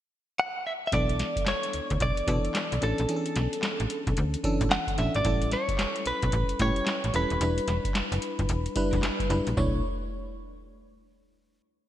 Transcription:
0.40 0.66 F#5 loud
0.67 0.72 E5 medium
0.87 0.92 E5 medium
0.92 1.23 B1 loud
0.92 1.81 E3 medium
0.92 1.81 B3 medium
0.92 1.81 D4 medium
0.92 1.81 A4 medium
0.92 1.48 D5 loud
0.92 kick loud
0.92 closed hi-hat medium
1.09 closed hi-hat medium
1.19 snare medium
1.19 closed hi-hat medium
1.36 kick medium
1.36 closed hi-hat medium
1.46 1.98 C#5 medium
1.46 snare loud
1.46 clap medium
1.46 closed hi-hat medium
1.63 closed hi-hat medium
1.73 1.81 D2 medium
1.73 closed hi-hat medium
1.90 1.98 D2 medium
1.90 kick medium
1.90 closed hi-hat medium
2.00 2.12 B1 medium
2.00 2.85 D5 loud
2.00 kick medium
2.00 closed hi-hat medium
2.17 closed hi-hat medium
2.27 2.39 B2 loud
2.27 2.73 E3 medium
2.27 2.74 B3 medium
2.27 2.74 D4 medium
2.27 2.74 A4 medium
2.27 kick medium
2.27 closed hi-hat medium
2.45 closed hi-hat medium
2.55 snare medium
2.55 clap medium
2.55 closed hi-hat medium
2.72 2.79 B1 medium
2.72 closed hi-hat soft
2.81 2.94 A1 medium
2.81 3.04 E3 medium
2.81 3.05 C#4 medium
2.81 3.05 D4 medium
2.81 3.05 A4 medium
2.81 4.41 A4 medium
2.81 closed hi-hat medium
2.98 3.06 A#1 medium
2.98 closed hi-hat soft
3.09 3.97 E3 medium
3.09 3.97 C#4 medium
3.09 3.98 D4 medium
3.09 3.17 G#4 medium
3.09 closed hi-hat medium
3.16 4.01 A4 medium
3.26 closed hi-hat medium
3.36 3.48 B1 loud
3.36 snare medium
3.36 closed hi-hat medium
3.53 closed hi-hat medium
3.63 snare loud
3.63 clap medium
3.63 closed hi-hat medium
3.80 3.87 A1 medium
3.80 closed hi-hat medium
3.90 closed hi-hat medium
4.07 4.14 B1 medium
4.07 kick medium
4.07 closed hi-hat medium
4.17 4.36 D2 loud
4.17 closed hi-hat medium
4.34 closed hi-hat medium
4.44 4.90 E3 medium
4.44 4.90 C#4 medium
4.44 4.90 D4 medium
4.44 4.90 A4 medium
4.44 kick medium
4.44 closed hi-hat medium
4.61 4.68 A1 medium
4.61 kick medium
4.61 closed hi-hat medium
4.71 4.96 F#5 loud
4.71 snare loud
4.71 clap medium
4.71 closed hi-hat medium
4.87 kick medium
4.87 closed hi-hat medium
4.98 5.10 A1 medium
4.98 5.21 E3 medium
4.98 5.21 C#4 medium
4.98 5.21 D4 medium
4.98 5.21 A4 medium
4.98 5.15 E5 medium
4.98 closed hi-hat medium
5.15 5.22 G#1 medium
5.15 5.50 D5 loud
5.15 closed hi-hat soft
5.25 5.56 A1 medium
5.25 6.13 G3 medium
5.25 6.14 C#4 medium
5.25 6.14 E4 medium
5.25 6.14 A4 medium
5.25 kick loud
5.25 closed hi-hat medium
5.42 closed hi-hat medium
5.51 6.07 C#5 medium
5.51 snare medium
5.51 closed hi-hat medium
5.68 kick medium
5.68 closed hi-hat medium
5.79 snare loud
5.79 clap medium
5.79 closed hi-hat medium
5.96 closed hi-hat medium
6.06 6.13 B1 medium
6.06 6.61 B4 medium
6.06 closed hi-hat medium
6.22 6.30 B1 medium
6.22 kick medium
6.22 closed hi-hat medium
6.32 6.45 A1 loud
6.32 kick medium
6.32 closed hi-hat medium
6.49 closed hi-hat medium
6.59 6.72 A2 loud
6.59 7.06 G3 medium
6.59 7.06 C#4 medium
6.59 7.06 E4 medium
6.59 7.07 G4 medium
6.59 7.15 C#5 medium
6.59 kick medium
6.59 closed hi-hat medium
6.76 closed hi-hat medium
6.87 snare loud
6.87 clap medium
6.87 closed hi-hat medium
7.04 7.11 A1 medium
7.04 closed hi-hat soft
7.14 7.26 E1 medium
7.14 7.37 G3 medium
7.14 7.37 C#4 medium
7.14 7.37 E4 medium
7.14 7.38 A4 medium
7.14 9.00 B4 medium
7.14 closed hi-hat medium
7.30 7.38 D#1 medium
7.30 closed hi-hat soft
7.41 7.60 E1 loud
7.41 8.30 G3 medium
7.41 8.30 D4 medium
7.41 8.30 E4 medium
7.41 8.30 B4 medium
7.41 closed hi-hat medium
7.58 closed hi-hat medium
7.68 7.80 E1 loud
7.68 snare medium
7.68 closed hi-hat medium
7.85 kick medium
7.85 closed hi-hat medium
7.95 snare loud
7.95 clap medium
7.95 closed hi-hat medium
8.12 8.19 F#1 medium
8.12 closed hi-hat medium
8.22 closed hi-hat medium
8.39 8.46 G1 medium
8.39 kick medium
8.39 closed hi-hat soft
8.49 8.68 E1 loud
8.49 closed hi-hat medium
8.66 closed hi-hat medium
8.76 9.22 G3 medium
8.76 9.22 D4 medium
8.76 9.22 E4 medium
8.76 9.23 B4 loud
8.76 kick medium
8.76 closed hi-hat medium
8.93 9.00 E1 medium
8.93 kick medium
8.93 closed hi-hat medium
9.03 snare medium
9.03 clap medium
9.03 closed hi-hat medium
9.20 kick medium
9.20 closed hi-hat soft
9.30 9.42 F#1 loud
9.30 9.53 G3 medium
9.30 9.53 D4 medium
9.30 9.53 E4 medium
9.30 9.53 B4 medium
9.30 closed hi-hat medium
9.47 9.54 A#1 medium
9.47 closed hi-hat soft
9.57 9.82 B1 medium
9.57 9.82 A3 medium
9.57 9.82 D4 medium
9.57 9.82 E4 medium
9.57 9.82 C#5 medium
9.57 kick medium
9.57 floor tom medium

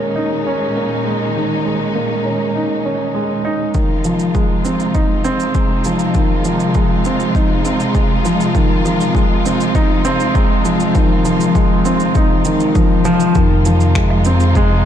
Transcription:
0.00 3.72 A#2 medium
0.00 3.72 D#3 medium
0.00 1.05 G#3 medium
0.00 3.72 G#3 medium
0.00 0.76 A#3 medium
0.00 0.46 C#4 medium
0.00 3.72 C#4 medium
0.00 3.72 D#4 medium
0.16 0.44 D#4 medium
0.46 0.75 C#4 medium
0.76 1.04 A#3 medium
1.05 1.34 G#3 medium
1.36 1.64 D#3 medium
1.66 1.83 G#3 medium
1.95 2.24 A#3 medium
2.25 2.42 C#4 medium
2.55 2.84 D#4 medium
2.85 3.14 C#4 medium
3.15 3.44 G#3 medium
3.45 3.74 D#4 medium
3.74 13.31 C3 medium
3.74 3.92 D#3 medium
3.74 13.31 F3 medium
3.74 13.31 G#3 medium
3.74 13.32 D#4 medium
3.74 13.31 F4 medium
3.74 kick medium
3.74 shaker soft
4.04 4.22 F3 medium
4.04 shaker medium
4.19 shaker soft
4.34 4.63 G#3 medium
4.34 kick medium
4.34 shaker soft
4.65 4.82 C4 medium
4.65 shaker medium
4.80 shaker soft
4.94 5.23 D#4 medium
4.94 kick loud
4.94 shaker soft
5.24 5.53 C4 medium
5.24 shaker medium
5.40 shaker soft
5.55 5.84 G#3 medium
5.55 kick loud
5.55 shaker soft
5.84 6.14 F3 medium
5.84 shaker medium
5.99 shaker soft
6.14 6.44 D#3 medium
6.14 kick loud
6.14 shaker soft
6.45 6.62 F3 medium
6.45 shaker medium
6.60 shaker soft
6.75 7.04 G#3 medium
6.75 kick loud
6.75 shaker soft
7.05 7.23 C4 medium
7.05 shaker medium
7.20 shaker soft
7.35 7.64 D#4 medium
7.35 kick loud
7.35 shaker soft
7.65 7.94 C4 medium
7.65 shaker medium
7.80 shaker soft
7.95 8.24 G#3 medium
7.95 kick loud
7.95 shaker soft
8.25 8.54 F3 medium
8.25 shaker medium
8.40 shaker soft
8.55 8.72 D#3 medium
8.55 kick loud
8.55 shaker soft
8.85 9.02 F3 medium
8.85 shaker medium
9.01 shaker soft
9.15 9.44 G#3 medium
9.15 kick loud
9.15 shaker soft
9.45 9.63 C4 medium
9.45 shaker medium
9.61 shaker soft
9.75 10.04 D#4 loud
9.75 kick loud
9.75 shaker soft
10.05 10.34 C4 loud
10.05 shaker medium
10.20 shaker soft
10.35 10.64 G#3 medium
10.35 kick loud
10.35 shaker soft
10.65 10.94 F3 medium
10.65 shaker medium
10.80 shaker soft
10.95 11.24 D#3 medium
10.95 kick loud
10.95 shaker soft
11.25 11.42 F3 medium
11.25 shaker medium
11.41 shaker soft
11.55 11.84 G#3 medium
11.55 kick loud
11.55 shaker soft
11.85 12.03 C4 medium
11.85 shaker medium
12.00 shaker soft
12.15 12.45 D#4 medium
12.15 kick loud
12.15 shaker soft
12.45 12.74 D#3 medium
12.45 shaker medium
12.60 shaker soft
12.75 13.03 F3 medium
12.75 kick loud
12.75 shaker soft
13.05 13.34 F3 loud
13.05 shaker medium
13.20 shaker soft
13.35 14.85 F2 medium
13.35 14.85 C3 medium
13.35 13.64 D#3 medium
13.35 14.85 F3 medium
13.35 14.85 G#3 medium
13.35 14.85 D#4 medium
13.35 14.85 F4 medium
13.35 kick loud
13.35 shaker soft
13.65 13.83 F3 medium
13.65 shaker medium
13.80 shaker soft
13.95 14.24 G#3 medium
13.95 finger snap medium
13.95 kick loud
13.95 shaker soft
14.10 low woodblock medium
14.25 14.54 C4 medium
14.25 shaker medium
14.40 shaker soft
14.55 14.84 G#3 loud
14.55 kick loud
14.55 shaker soft

